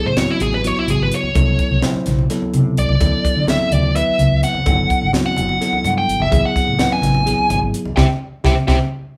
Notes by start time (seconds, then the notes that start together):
Already playing: F#3 B3 E4 G#4
0.05 A2 C5, high conga
0.17 F#3 B3 E4 F#4 C#5, snare, closed hi-hat, low conga
0.30 E4
0.40 A1 G#4, closed hi-hat, high conga, low conga
0.53 B4, muted conga
0.64 F#3 B3 E4 F#4 C#5, closed hi-hat, low conga
0.77 E4, low conga
0.88 G#1 G#4, closed hi-hat, high conga
1.00 G#1 B4
1.12 C#5, closed hi-hat
1.23 muted fretless electric bass stroke, high conga, low conga
1.35 C2 F#3 B3 E4 A4, kick, closed hi-hat, muted conga, low conga
1.48 low conga
1.59 kick, closed hi-hat
1.71 C2, high conga
1.82 B2 F#3 E4 C5, snare, closed hi-hat, low conga
1.94 muted fretless electric bass stroke
2.06 B1, snare, closed hi-hat, high conga, low conga
2.19 muted conga
2.30 F#3 B3 E4 A4, snare, closed hi-hat
2.42 low conga
2.54 C3, closed hi-hat, high conga
2.66 low conga
2.77 C2 D5, closed hi-hat, low conga
2.89 C2, high conga, low conga
3.00 D2 F#3 B3 E4 A4, kick, closed hi-hat, muted conga
3.25 muted fretless electric bass stroke, kick, closed hi-hat, low conga
3.36 D3, high conga
3.47 F#3 B3 E4 A4 E5, snare, closed hi-hat, low conga
3.71 D2 D5, closed hi-hat, high conga, low conga
3.83 muted conga
3.95 F#3 B3 E4 B4 E5, closed hi-hat
4.08 muted fretless electric bass stroke
4.18 C#2, closed hi-hat, high conga
4.32 C#2
4.43 F#5, snare, closed hi-hat
4.54 muted fretless electric bass stroke, high conga, low conga
4.66 G1 F#3 B3 E4 A4, kick, closed hi-hat, muted conga
4.90 kick, closed hi-hat, low conga
5.01 G1, high conga
5.13 F#3 B3 E4 F#4, snare, closed hi-hat, low conga
5.26 F#5, muted fretless electric bass stroke
5.36 F#1, closed hi-hat, high conga, low conga
5.49 muted conga
5.61 F#3 B3 E4 A4, snare, closed hi-hat, low conga
5.73 low conga
5.84 G2, closed hi-hat, high conga
5.98 G5
6.08 G1, closed hi-hat
6.20 G1 E5, high conga, low conga
6.31 A1 F#3 B3 E4 G#4, kick, closed hi-hat, muted conga
6.45 F#5
6.55 muted fretless electric bass stroke, kick, snare, closed hi-hat, low conga
6.67 A2, high conga
6.79 F#3 B3 E4 B4, snare, closed hi-hat, low conga
6.93 G#5
7.02 A1, snare, closed hi-hat, high conga, low conga
7.14 muted conga
7.26 F#3 B3 E4 G#4, snare, closed hi-hat, low conga
7.38 low conga
7.50 G#1, closed hi-hat, high conga
7.62 G#1
7.74 closed hi-hat
7.85 muted fretless electric bass stroke, high conga, low conga
7.96 C2 C4 E4 G4 C5 E5 G5, kick, snare, high conga
8.44 C2 C4 E4 G4 C5 E5 G5, kick, snare, high conga
8.67 C2 C4 E4 G4 C5 E5 G5, kick, snare, high conga